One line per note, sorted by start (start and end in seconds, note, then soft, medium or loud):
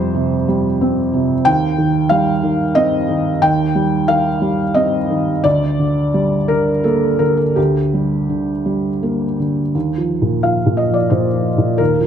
0.00 1.42 F2 medium
0.00 0.14 C3 medium
0.00 0.34 G3 medium
0.00 0.46 C5 medium
0.14 0.67 C3 medium
0.48 1.00 G3 medium
0.81 1.33 C4 medium
1.13 1.46 C3 medium
1.45 3.39 D#2 medium
1.45 2.11 G5 loud
1.78 2.31 D#3 medium
2.09 2.64 G3 medium
2.09 2.76 F5 medium
2.43 2.96 D#3 medium
2.75 3.29 C4 medium
2.75 3.42 D#5 loud
3.09 3.62 D#3 medium
3.42 5.41 D#2 medium
3.42 4.09 G5 loud
3.75 4.29 G3 medium
4.08 4.62 D#3 medium
4.08 4.76 F5 loud
4.42 4.97 G3 medium
4.74 5.31 C4 medium
4.74 5.44 D#5 medium
5.10 5.45 D#3 medium
5.44 7.53 D2 medium
5.44 6.49 D5 loud
5.79 6.35 D3 soft
6.14 6.71 G3 soft
6.48 7.06 D3 soft
6.48 6.84 A#4 medium
6.84 7.42 A#3 soft
6.84 7.20 A4 medium
7.19 7.78 D3 soft
7.19 7.38 A#4 medium
7.37 7.56 A4 medium
7.56 9.71 D2 soft
7.56 9.38 G4 medium
7.94 8.52 G3 soft
8.29 8.88 D3 soft
8.66 9.24 G3 soft
9.03 9.61 A#3 soft
9.40 9.75 D3 soft
9.75 11.76 D#2 soft
9.98 10.35 F3 soft
10.22 10.58 A#2 soft
10.43 10.81 F3 soft
10.43 10.78 F5 medium
10.66 11.03 A#2 soft
10.77 10.95 D#5 medium
10.90 11.26 F3 soft
10.94 11.12 D5 medium
11.10 11.48 A#2 soft
11.10 11.79 C5 medium
11.33 11.70 F3 soft
11.58 11.93 A#2 soft
11.78 12.07 D#2 medium
11.78 12.07 A#4 medium
12.01 12.07 F3 soft